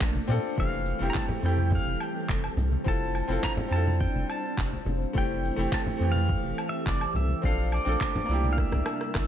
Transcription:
Already playing: A3 A#3 C4 D4 F4 A4
0.01 A#1, kick, clap, cabasa
0.16 high conga, cabasa
0.28 A#2 C4 D4 F4 A4, low conga, cabasa
0.44 cabasa
0.56 F1 E3 G3 A3 C4 G4 A4 F5, kick, cabasa
0.60 G4
0.72 cabasa
0.86 cabasa
0.99 F1 A3 C4 E4 G4, cabasa
1.10 A#5
1.14 A5, kick, clap, high conga, cabasa
1.29 low conga, cabasa
1.40 F2 A3 C4, cabasa
1.45 E4 G4 G5
1.58 high conga, cabasa
1.71 kick, low conga, cabasa
1.75 F5
1.86 F1, cabasa
2.00 G5, cabasa, low woodblock
2.15 cabasa
2.29 F1, kick, clap, cabasa
2.44 cabasa, low woodblock
2.57 C2, low conga, cabasa
2.72 high conga, cabasa
2.84 F1 C4 D4 E4 F4 A4 A5, kick, cabasa
3.01 cabasa
3.15 cabasa, low woodblock
3.28 F1 C4 E4 F4 A4, cabasa
3.43 A#5, kick, clap, high conga, cabasa
3.57 low conga, cabasa
3.68 F2 C4 E4
3.72 F4 A4 A5, cabasa
3.87 high conga, cabasa
4.00 G5, kick, cabasa
4.15 F1, high conga, cabasa
4.30 A5, cabasa, low woodblock
4.45 cabasa
4.58 F1, kick, clap, cabasa
4.73 high conga, cabasa
4.85 F1, low conga, cabasa
5.02 cabasa
5.13 F1 E3 A3 C4 E4 G4 A4, kick, cabasa
5.18 G4 G5
5.31 cabasa
5.44 cabasa
5.56 F1 A3 C4 E4 G4, cabasa
5.72 A5, kick, clap, high conga, cabasa
5.86 low conga, cabasa
5.97 F2 A3 C4
6.01 E3 G4, cabasa
6.12 F5, high conga
6.17 cabasa
6.29 kick, low conga, cabasa
6.43 F1, cabasa
6.58 cabasa, low woodblock
6.69 E5, cabasa
6.86 F1 D5, kick, clap, cabasa
7.01 cabasa, low woodblock
7.14 C2 E5, low conga, cabasa
7.29 high conga, cabasa
7.42 A#1 A3 A#3 C4 D4 F4 F5, kick, cabasa
7.46 A4
7.59 cabasa
7.72 D5, cabasa, low woodblock
7.85 A#1 C4 D4 F4 A4, cabasa
8.01 kick, clap, high conga, cabasa
8.16 low conga, cabasa
8.26 C2 A#3 D4, cabasa
8.31 E4 G4
8.44 high conga, cabasa
8.53 F5
8.58 C3 G3 E4 E5, kick, cross-stick, cabasa
8.72 C2, cross-stick, high conga, low conga, cabasa
8.86 cross-stick, cabasa, low woodblock
9.01 cross-stick, cabasa
9.15 G1, kick, cross-stick, clap, cabasa

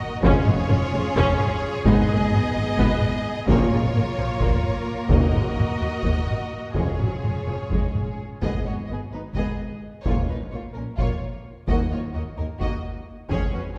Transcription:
Already playing: A#3 F#4 A#4 D#5
0.22 F1 F2 G#2 G#3 C#4 F4 G#4 C#5, taiko
0.47 F1 F2 B3, taiko mid
0.69 F1 F2 C#4, taiko mid
0.93 F1 F2 G#3
1.16 F1 F2 C#4, taiko
1.39 taiko mid
1.85 G#1 G#2 G#3 B3 D#4 D#5, taiko
2.09 G#1 G#2 A#3, taiko mid
2.32 G#1 G#2 B3, taiko mid
2.54 G#1 G#2 G#3
2.77 G#1 G#2 B3, taiko
3.02 taiko mid
3.47 A#1 A#2 F3 A#3 C#4 F4 A#4 C#5, taiko
3.70 A#1 A#2 G#3, taiko mid
3.94 A#1 A#2 A#3, taiko mid
4.17 A#1 A#2 F3
4.40 A#1 A#2 A#3, taiko
4.64 taiko mid
5.07 D#2 A#2 F#3 A#3 D#4 F#4 D#5, taiko
5.33 D#2 G#3, taiko mid
5.56 D#2 A#3, taiko mid
5.80 D#2 F#3
6.02 D#2 A#3, taiko
6.27 taiko mid
6.74 F1 F2 F3 G#3 C#4 F4 G#4 C#5, taiko
6.99 F1 F2 F#3, taiko mid
7.23 F1 F2 G#3, taiko mid
7.47 F1 F2 F3
7.70 F1 F2 G#3, taiko
7.95 taiko mid
8.41 G#1 G#2 G#3 B3 G#4 D#5, taiko
8.65 G#1 G#2 B3 F#4 C#5
8.87 G#1 G#2 B3 D#5
8.92 G#4
9.12 G#1 G#2 B3 D#4 B4
9.35 G#1 G#2 B3 G#4 D#5, taiko
10.03 A#1 A#2 F3 A#3 C#5, taiko
10.07 C#4 F4
10.29 A#1 A#2 A#3 D#4 B4
10.52 A#1 A#2 A#3 F4 C#5
10.74 A#1 A#2 A#3 C#4 A#4
10.98 A#1 A#2 A#3 F4 C#5, taiko
11.67 D#2 D#3 F#3 A#3 D#4 F#4 D#5, taiko
11.91 D#2 A#3 F4 C#5
12.13 D#2 A#3 F#4 D#5
12.37 D#2 A#3 D#4 A#4
12.59 D#2 A#3 F#4 D#5, taiko
13.29 F1 F2 G#3 C#4 G#4 C#5, taiko
13.53 F1 F2 C#4 F#4 B4

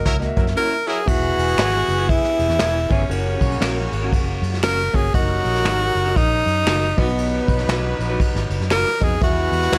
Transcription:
0.05 C#2 F#3 E4 A#4, kick, closed hi-hat
0.19 A#3 F#4 D#5, snare, closed hi-hat
0.26 E5
0.36 F#2 F#3 E4 A#4, kick, closed hi-hat
0.47 snare
0.56 F#3 C#4 E4 A#4
0.87 F#3 E4 G#4 A#4
1.06 E1 E3 B3 E4 F#4 G#4 E5, kick, crash
1.12 G#4
1.37 E1, ride
1.48 ride
1.58 G#1 E4 G#4 B4, finger snap, snare, ride
1.88 F#1, ride
1.98 E4 G#4 B4
2.09 E4, kick, ride
2.24 snare
2.39 E1, ride
2.49 E2, snare
2.59 E1 E4 G#4 B4, finger snap, snare, ride
2.89 G1 B3 C#4 E4 G#4 B4 E5, kick, ride
3.09 F#1 C#3 A#3 C#4 F#4 C#5, ride
3.41 B1, kick, ride
3.51 ride
3.61 A#1 C#4 F#4 A#4, finger snap, snare, ride
3.92 G#1, ride
4.02 C#4 F#4 A#4
4.12 F#1, kick, ride
4.42 F#2, ride
4.54 snare
4.62 F#1 C#4 F#4 A#4, finger snap, snare, ride
4.93 G1 A#3 C#4 F#4 G#4 C#5, kick, ride
5.04 ride
5.13 F#1 F#3 A#3 D#4 F#4 A#4 D#5, kick, ride
5.45 A#1, ride
5.55 snare, ride
5.64 G#1 D#4 F#4 A#4, finger snap, snare, ride
5.95 F#1, ride
6.05 D#4 F#4 A#4
6.16 A#1 D#4, kick, ride
6.46 F#2, ride
6.66 F#1 D#4 F#4 A#4, finger snap, snare, ride
6.97 B1 B2 F#3 B3 D#4 F#4 B4 D#5, kick, ride
7.08 ride
7.18 ride
7.48 B1, kick, ride
7.59 snare, ride
7.68 B1 D#4 F#4 B4, finger snap, snare, ride
7.99 A#1, ride
8.09 D#4 F#4 B4
8.20 kick, ride
8.34 G#1, snare
8.50 F#1, ride
8.60 F#2, snare
8.70 F#1 D#4 F#4 A#4 B4, finger snap, snare, ride
9.00 F2 B3 D#4 F#4 G#4 D#5, kick, ride
9.21 E2 E3 G#3 B3 E4 F#4 G#4 B4 E5, kick, ride
9.52 E2, ride
9.62 snare, ride
9.72 D#2 E4 G#4 B4, finger snap, snare, ride

